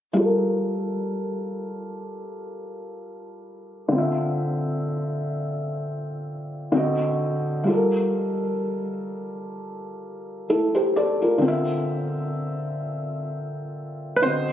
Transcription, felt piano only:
0.13 G3 F4
0.20 A4 A#4
3.88 D3 C4
3.95 F4 E5
6.72 D3 C4 F#4
6.77 D#5
7.64 G3 F4
7.70 A4 A#4
10.50 E4 A4
10.75 G4 C5
10.96 A4 D5
11.22 F4 A#4
11.38 D3 C4
11.45 F4 E5
14.22 D3 C4 F#4
14.27 D#5

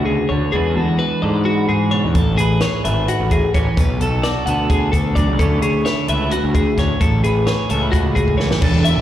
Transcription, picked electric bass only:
Already playing: D2
0.30 D2
0.53 E2
0.77 E2
1.23 G#2
1.69 G#2
2.05 E2
2.15 A1
2.38 A1
2.85 G#1
3.20 A1
3.55 A1
3.78 B1
4.00 B1
4.47 D2
4.93 D2
5.28 C#2
5.40 D2
5.62 D2
6.09 C#2
6.44 D2
6.78 D2
7.01 A1
7.25 A1
7.71 C#2
8.16 C#2
8.51 F#1
8.63 E1
8.96 A1

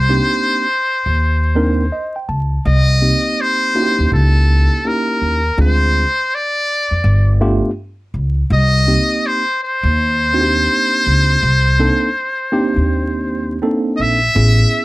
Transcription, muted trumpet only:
Already playing: C5
2.67 D#5
3.41 C5
4.14 A4
4.87 A#4
5.61 C5
6.35 D5
8.53 D#5
9.26 C5
9.63 C5
13.96 D#5
14.01 E5

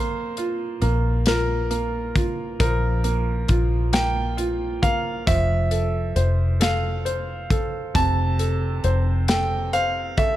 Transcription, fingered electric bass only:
Already playing: A#1
0.82 A#1
2.60 A#1
3.49 A#1
5.28 F1
6.16 F1
7.95 F1
8.84 F1

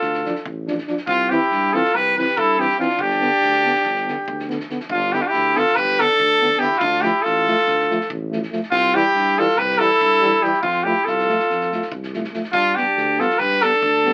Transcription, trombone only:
0.25 D4
0.68 D4
0.88 D4
1.30 C4
1.73 C4
2.18 C4
2.58 C4
2.78 C4
3.20 B3
3.64 B3
4.06 B3
4.48 B3
4.70 B3
5.13 B3
5.54 B3
5.99 B3
6.41 B3
6.58 B3
7.01 A3
7.46 A3
7.90 A3
8.31 A3
8.52 A3
8.94 G3
9.37 G3
9.80 G3
10.21 G3
10.41 G3
10.85 A3
11.27 A3
11.71 A3
12.14 A3
12.33 A3
12.76 B3
13.18 B3
13.63 B3
14.04 B3

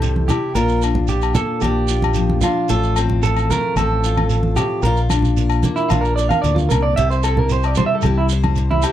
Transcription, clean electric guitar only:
Already playing: A4
0.28 G4
0.55 A#4
1.09 G4
1.35 A4
1.62 G4
2.43 F4
2.70 A4
3.23 A4
3.50 A#4
3.77 A4
4.56 G4
4.83 A#4
5.76 E4
5.89 F4
6.01 A#4
6.16 D5
6.29 F5
6.42 D5
6.55 F4
6.69 A#4
6.83 D5
6.96 E5
7.10 C5
7.24 A4
7.39 A#4
7.52 C5
7.65 D5
7.77 C5
7.86 E5
7.95 A4
8.04 G4
8.18 E4
8.71 E4
8.83 G4

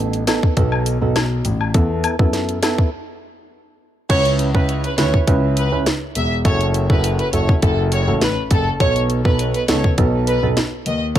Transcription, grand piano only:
Already playing: A1
0.57 B1
1.02 B1
1.45 A1
1.75 E2
2.19 F#2
4.10 C#2
4.98 D2
5.28 C#2
5.72 C#2
6.16 E1
6.45 F#1
7.33 F#1
7.63 F#1
8.08 A1
8.51 F#1
8.80 B1
9.69 C#2
9.98 B1
10.43 B1
10.86 D#2
11.16 E2

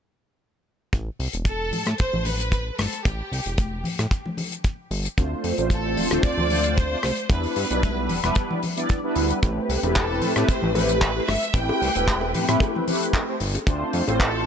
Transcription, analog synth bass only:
0.93 A1
1.19 C2
1.34 E1
1.73 A2
1.87 A2
2.00 A1
2.13 A1
2.79 G1
3.05 A1
3.32 C2
3.46 E1
3.85 A2
3.99 A2
4.91 G1
5.18 D2
5.44 F2
5.58 A1
5.97 D1
6.11 D1
6.23 D2
6.38 D2
7.03 C2
7.30 E2
7.56 G2
7.71 B1
8.09 E1
8.24 E1
9.16 D2
9.43 A1
9.69 C2
9.83 E1
10.22 A2
10.36 A2
10.49 A1
10.63 A1
11.28 G1
11.54 A1
11.81 C2
11.96 E1
12.34 A2
12.49 A2
13.41 G1
13.67 D2
13.94 F2
14.08 A1

